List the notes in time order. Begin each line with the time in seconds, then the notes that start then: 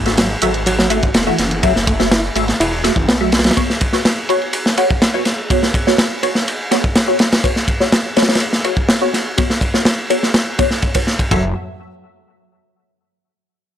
Already playing: G#1
0.06 A3 F#4 E5, snare, closed hi-hat
0.17 F#3, snare, closed hi-hat, ride
0.42 G#1 F#3 A3 F#4 E5, closed hi-hat, ride
0.54 closed hi-hat
0.66 F#3, closed hi-hat, ride
0.79 F#3, snare
0.90 A3 F#4 E5, closed hi-hat, ride
1.03 kick, closed hi-hat
1.14 E1, snare, closed hi-hat, ride
1.27 E3 A3 F#4 E5
1.38 F#1, snare, closed hi-hat, ride
1.51 closed hi-hat
1.63 F#3 A3 F#4 E5, kick, closed hi-hat, ride
1.76 snare
1.87 A3, kick, closed hi-hat, ride
1.99 A3 F#4 E5, snare, closed hi-hat
2.11 E4, snare, closed hi-hat, ride
2.36 G#1 A3 F#4 E5, closed hi-hat, ride
2.48 snare, closed hi-hat
2.60 E1 E4, closed hi-hat, ride
2.84 A3 F#4 E5, snare, closed hi-hat, ride
2.96 F#1 E3, kick, closed hi-hat
3.08 B1 B3, snare, closed hi-hat, ride
3.21 F#3 A3 F#4 E5
3.32 snare, closed hi-hat, ride
3.39 snare, ride
3.44 F#3, snare, closed hi-hat, ride
3.51 snare, ride
3.57 B3 F#4 C#5, kick, closed hi-hat, ride
3.70 snare
3.81 kick, closed hi-hat, ride
3.93 B3 F#4 C#5, snare, closed hi-hat
4.05 snare, closed hi-hat, ride
4.29 B3 F#4 C#5, closed hi-hat, ride
4.42 closed hi-hat
4.53 closed hi-hat, ride
4.66 snare
4.77 B3 F#4 C#5, closed hi-hat, ride
4.90 kick, closed hi-hat
5.02 snare, closed hi-hat, ride
5.14 B3 F#4 C#5
5.25 snare, closed hi-hat, ride
5.38 closed hi-hat
5.50 B3 F#4 C#5, kick, closed hi-hat, ride
5.63 snare
5.74 kick, closed hi-hat, ride
5.87 B3 F#4 C#5, snare, closed hi-hat
5.98 snare, closed hi-hat, ride
6.23 B3 F#4 C#5, closed hi-hat, ride
6.35 snare, closed hi-hat
6.47 closed hi-hat, ride
6.71 B3 F#4 C#5, snare, closed hi-hat, ride
6.84 kick, closed hi-hat
6.95 snare, ride
7.08 B3 F#4 C#5
7.19 snare, closed hi-hat, ride
7.32 snare, ride
7.44 B3 F#4 C#5, kick, ride
7.56 snare
7.68 kick, closed hi-hat, ride
7.80 B3 F#4 C#5, snare
7.92 snare, ride
8.16 B3 F#4 C#5, snare, closed hi-hat, ride
8.22 snare, ride
8.29 snare, ride
8.35 snare, ride
8.40 ride
8.53 snare
8.64 B3 F#4 C#5, ride
8.77 kick
8.89 snare, ride
9.01 B3 F#4 C#5
9.13 snare, closed hi-hat, ride
9.26 closed hi-hat
9.37 B3 F#4 C#5, kick, ride
9.50 snare
9.61 kick, ride
9.74 B3 F#4 C#5, snare
9.85 snare, ride
10.10 B3 F#4 C#5, ride
10.23 snare
10.34 snare, ride
10.58 B3 F#4 C#5, kick, ride
10.71 snare
10.82 kick, ride
10.95 B3 F#4 C#5, kick, ride
11.07 snare
11.19 kick, ride
11.31 F#1 F#3 A3 F#4 E5, kick, floor tom, ride bell